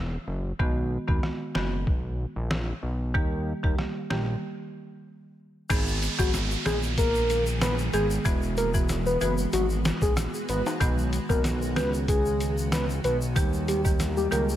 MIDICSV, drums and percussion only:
0, 0, Header, 1, 2, 480
1, 0, Start_track
1, 0, Key_signature, 5, "minor"
1, 0, Tempo, 638298
1, 448, Time_signature, 4, 2, 24, 8
1, 10952, End_track
2, 0, Start_track
2, 0, Title_t, "Drums"
2, 448, Note_on_c, 9, 36, 107
2, 523, Note_off_c, 9, 36, 0
2, 816, Note_on_c, 9, 36, 87
2, 891, Note_off_c, 9, 36, 0
2, 926, Note_on_c, 9, 37, 54
2, 926, Note_on_c, 9, 38, 55
2, 1002, Note_off_c, 9, 37, 0
2, 1002, Note_off_c, 9, 38, 0
2, 1166, Note_on_c, 9, 38, 103
2, 1241, Note_off_c, 9, 38, 0
2, 1407, Note_on_c, 9, 36, 91
2, 1482, Note_off_c, 9, 36, 0
2, 1885, Note_on_c, 9, 37, 88
2, 1885, Note_on_c, 9, 38, 105
2, 1960, Note_off_c, 9, 37, 0
2, 1960, Note_off_c, 9, 38, 0
2, 2367, Note_on_c, 9, 36, 108
2, 2443, Note_off_c, 9, 36, 0
2, 2736, Note_on_c, 9, 36, 85
2, 2811, Note_off_c, 9, 36, 0
2, 2846, Note_on_c, 9, 37, 54
2, 2846, Note_on_c, 9, 38, 57
2, 2922, Note_off_c, 9, 37, 0
2, 2922, Note_off_c, 9, 38, 0
2, 3087, Note_on_c, 9, 38, 105
2, 3162, Note_off_c, 9, 38, 0
2, 4287, Note_on_c, 9, 42, 67
2, 4287, Note_on_c, 9, 49, 91
2, 4288, Note_on_c, 9, 36, 111
2, 4288, Note_on_c, 9, 82, 81
2, 4362, Note_off_c, 9, 42, 0
2, 4362, Note_off_c, 9, 49, 0
2, 4363, Note_off_c, 9, 36, 0
2, 4363, Note_off_c, 9, 82, 0
2, 4415, Note_on_c, 9, 82, 42
2, 4491, Note_off_c, 9, 82, 0
2, 4530, Note_on_c, 9, 42, 63
2, 4530, Note_on_c, 9, 82, 59
2, 4605, Note_off_c, 9, 42, 0
2, 4605, Note_off_c, 9, 82, 0
2, 4656, Note_on_c, 9, 36, 87
2, 4656, Note_on_c, 9, 82, 69
2, 4731, Note_off_c, 9, 36, 0
2, 4731, Note_off_c, 9, 82, 0
2, 4767, Note_on_c, 9, 37, 55
2, 4767, Note_on_c, 9, 38, 55
2, 4767, Note_on_c, 9, 42, 64
2, 4767, Note_on_c, 9, 82, 67
2, 4842, Note_off_c, 9, 42, 0
2, 4843, Note_off_c, 9, 37, 0
2, 4843, Note_off_c, 9, 38, 0
2, 4843, Note_off_c, 9, 82, 0
2, 4896, Note_on_c, 9, 82, 47
2, 4971, Note_off_c, 9, 82, 0
2, 5006, Note_on_c, 9, 42, 53
2, 5007, Note_on_c, 9, 38, 104
2, 5009, Note_on_c, 9, 82, 64
2, 5082, Note_off_c, 9, 38, 0
2, 5082, Note_off_c, 9, 42, 0
2, 5085, Note_off_c, 9, 82, 0
2, 5135, Note_on_c, 9, 82, 65
2, 5210, Note_off_c, 9, 82, 0
2, 5246, Note_on_c, 9, 42, 80
2, 5247, Note_on_c, 9, 36, 93
2, 5248, Note_on_c, 9, 82, 66
2, 5321, Note_off_c, 9, 42, 0
2, 5323, Note_off_c, 9, 36, 0
2, 5324, Note_off_c, 9, 82, 0
2, 5375, Note_on_c, 9, 82, 50
2, 5450, Note_off_c, 9, 82, 0
2, 5488, Note_on_c, 9, 82, 56
2, 5489, Note_on_c, 9, 42, 60
2, 5563, Note_off_c, 9, 82, 0
2, 5564, Note_off_c, 9, 42, 0
2, 5614, Note_on_c, 9, 82, 74
2, 5690, Note_off_c, 9, 82, 0
2, 5727, Note_on_c, 9, 37, 85
2, 5727, Note_on_c, 9, 38, 108
2, 5727, Note_on_c, 9, 42, 79
2, 5728, Note_on_c, 9, 82, 77
2, 5802, Note_off_c, 9, 37, 0
2, 5802, Note_off_c, 9, 38, 0
2, 5803, Note_off_c, 9, 42, 0
2, 5803, Note_off_c, 9, 82, 0
2, 5854, Note_on_c, 9, 82, 48
2, 5929, Note_off_c, 9, 82, 0
2, 5967, Note_on_c, 9, 42, 59
2, 5967, Note_on_c, 9, 82, 54
2, 6042, Note_off_c, 9, 42, 0
2, 6042, Note_off_c, 9, 82, 0
2, 6096, Note_on_c, 9, 82, 71
2, 6171, Note_off_c, 9, 82, 0
2, 6207, Note_on_c, 9, 42, 65
2, 6207, Note_on_c, 9, 82, 81
2, 6208, Note_on_c, 9, 36, 110
2, 6283, Note_off_c, 9, 36, 0
2, 6283, Note_off_c, 9, 42, 0
2, 6283, Note_off_c, 9, 82, 0
2, 6334, Note_on_c, 9, 82, 46
2, 6409, Note_off_c, 9, 82, 0
2, 6447, Note_on_c, 9, 82, 58
2, 6450, Note_on_c, 9, 42, 59
2, 6522, Note_off_c, 9, 82, 0
2, 6525, Note_off_c, 9, 42, 0
2, 6574, Note_on_c, 9, 82, 69
2, 6577, Note_on_c, 9, 36, 91
2, 6649, Note_off_c, 9, 82, 0
2, 6652, Note_off_c, 9, 36, 0
2, 6685, Note_on_c, 9, 82, 69
2, 6688, Note_on_c, 9, 37, 55
2, 6688, Note_on_c, 9, 38, 56
2, 6688, Note_on_c, 9, 42, 61
2, 6760, Note_off_c, 9, 82, 0
2, 6763, Note_off_c, 9, 37, 0
2, 6763, Note_off_c, 9, 38, 0
2, 6763, Note_off_c, 9, 42, 0
2, 6815, Note_on_c, 9, 82, 46
2, 6890, Note_off_c, 9, 82, 0
2, 6928, Note_on_c, 9, 82, 65
2, 6929, Note_on_c, 9, 42, 54
2, 7003, Note_off_c, 9, 82, 0
2, 7004, Note_off_c, 9, 42, 0
2, 7052, Note_on_c, 9, 82, 65
2, 7127, Note_off_c, 9, 82, 0
2, 7167, Note_on_c, 9, 82, 66
2, 7168, Note_on_c, 9, 42, 76
2, 7242, Note_off_c, 9, 82, 0
2, 7243, Note_off_c, 9, 42, 0
2, 7292, Note_on_c, 9, 82, 50
2, 7367, Note_off_c, 9, 82, 0
2, 7408, Note_on_c, 9, 42, 58
2, 7408, Note_on_c, 9, 82, 56
2, 7410, Note_on_c, 9, 38, 115
2, 7483, Note_off_c, 9, 82, 0
2, 7484, Note_off_c, 9, 42, 0
2, 7485, Note_off_c, 9, 38, 0
2, 7534, Note_on_c, 9, 36, 91
2, 7535, Note_on_c, 9, 82, 73
2, 7609, Note_off_c, 9, 36, 0
2, 7611, Note_off_c, 9, 82, 0
2, 7646, Note_on_c, 9, 37, 86
2, 7646, Note_on_c, 9, 38, 62
2, 7647, Note_on_c, 9, 42, 77
2, 7648, Note_on_c, 9, 82, 73
2, 7721, Note_off_c, 9, 37, 0
2, 7721, Note_off_c, 9, 38, 0
2, 7722, Note_off_c, 9, 42, 0
2, 7723, Note_off_c, 9, 82, 0
2, 7776, Note_on_c, 9, 82, 49
2, 7852, Note_off_c, 9, 82, 0
2, 7886, Note_on_c, 9, 42, 58
2, 7888, Note_on_c, 9, 82, 53
2, 7961, Note_off_c, 9, 42, 0
2, 7963, Note_off_c, 9, 82, 0
2, 8019, Note_on_c, 9, 65, 73
2, 8019, Note_on_c, 9, 82, 69
2, 8094, Note_off_c, 9, 65, 0
2, 8094, Note_off_c, 9, 82, 0
2, 8126, Note_on_c, 9, 42, 64
2, 8128, Note_on_c, 9, 36, 110
2, 8131, Note_on_c, 9, 82, 77
2, 8202, Note_off_c, 9, 42, 0
2, 8203, Note_off_c, 9, 36, 0
2, 8206, Note_off_c, 9, 82, 0
2, 8259, Note_on_c, 9, 82, 44
2, 8334, Note_off_c, 9, 82, 0
2, 8368, Note_on_c, 9, 42, 61
2, 8371, Note_on_c, 9, 82, 57
2, 8443, Note_off_c, 9, 42, 0
2, 8446, Note_off_c, 9, 82, 0
2, 8496, Note_on_c, 9, 36, 91
2, 8498, Note_on_c, 9, 82, 69
2, 8571, Note_off_c, 9, 36, 0
2, 8573, Note_off_c, 9, 82, 0
2, 8604, Note_on_c, 9, 42, 66
2, 8605, Note_on_c, 9, 37, 55
2, 8605, Note_on_c, 9, 38, 59
2, 8609, Note_on_c, 9, 82, 69
2, 8679, Note_off_c, 9, 42, 0
2, 8680, Note_off_c, 9, 37, 0
2, 8680, Note_off_c, 9, 38, 0
2, 8685, Note_off_c, 9, 82, 0
2, 8739, Note_on_c, 9, 82, 49
2, 8814, Note_off_c, 9, 82, 0
2, 8846, Note_on_c, 9, 38, 105
2, 8846, Note_on_c, 9, 42, 54
2, 8852, Note_on_c, 9, 82, 68
2, 8921, Note_off_c, 9, 38, 0
2, 8921, Note_off_c, 9, 42, 0
2, 8928, Note_off_c, 9, 82, 0
2, 8979, Note_on_c, 9, 82, 64
2, 9054, Note_off_c, 9, 82, 0
2, 9087, Note_on_c, 9, 36, 96
2, 9087, Note_on_c, 9, 42, 77
2, 9092, Note_on_c, 9, 82, 68
2, 9162, Note_off_c, 9, 36, 0
2, 9162, Note_off_c, 9, 42, 0
2, 9167, Note_off_c, 9, 82, 0
2, 9217, Note_on_c, 9, 82, 49
2, 9293, Note_off_c, 9, 82, 0
2, 9328, Note_on_c, 9, 42, 57
2, 9331, Note_on_c, 9, 82, 56
2, 9403, Note_off_c, 9, 42, 0
2, 9407, Note_off_c, 9, 82, 0
2, 9458, Note_on_c, 9, 82, 75
2, 9534, Note_off_c, 9, 82, 0
2, 9567, Note_on_c, 9, 37, 93
2, 9567, Note_on_c, 9, 38, 112
2, 9567, Note_on_c, 9, 42, 79
2, 9570, Note_on_c, 9, 82, 77
2, 9642, Note_off_c, 9, 37, 0
2, 9642, Note_off_c, 9, 38, 0
2, 9643, Note_off_c, 9, 42, 0
2, 9646, Note_off_c, 9, 82, 0
2, 9699, Note_on_c, 9, 82, 52
2, 9774, Note_off_c, 9, 82, 0
2, 9808, Note_on_c, 9, 42, 59
2, 9811, Note_on_c, 9, 82, 53
2, 9883, Note_off_c, 9, 42, 0
2, 9886, Note_off_c, 9, 82, 0
2, 9938, Note_on_c, 9, 82, 69
2, 10014, Note_off_c, 9, 82, 0
2, 10047, Note_on_c, 9, 42, 64
2, 10048, Note_on_c, 9, 36, 110
2, 10050, Note_on_c, 9, 82, 77
2, 10123, Note_off_c, 9, 36, 0
2, 10123, Note_off_c, 9, 42, 0
2, 10125, Note_off_c, 9, 82, 0
2, 10177, Note_on_c, 9, 82, 45
2, 10253, Note_off_c, 9, 82, 0
2, 10289, Note_on_c, 9, 42, 63
2, 10291, Note_on_c, 9, 82, 58
2, 10364, Note_off_c, 9, 42, 0
2, 10366, Note_off_c, 9, 82, 0
2, 10416, Note_on_c, 9, 36, 91
2, 10417, Note_on_c, 9, 82, 70
2, 10491, Note_off_c, 9, 36, 0
2, 10492, Note_off_c, 9, 82, 0
2, 10526, Note_on_c, 9, 42, 63
2, 10527, Note_on_c, 9, 37, 56
2, 10527, Note_on_c, 9, 38, 55
2, 10528, Note_on_c, 9, 82, 68
2, 10601, Note_off_c, 9, 42, 0
2, 10602, Note_off_c, 9, 37, 0
2, 10602, Note_off_c, 9, 38, 0
2, 10603, Note_off_c, 9, 82, 0
2, 10657, Note_on_c, 9, 82, 48
2, 10732, Note_off_c, 9, 82, 0
2, 10769, Note_on_c, 9, 42, 55
2, 10770, Note_on_c, 9, 82, 65
2, 10844, Note_off_c, 9, 42, 0
2, 10845, Note_off_c, 9, 82, 0
2, 10897, Note_on_c, 9, 82, 67
2, 10952, Note_off_c, 9, 82, 0
2, 10952, End_track
0, 0, End_of_file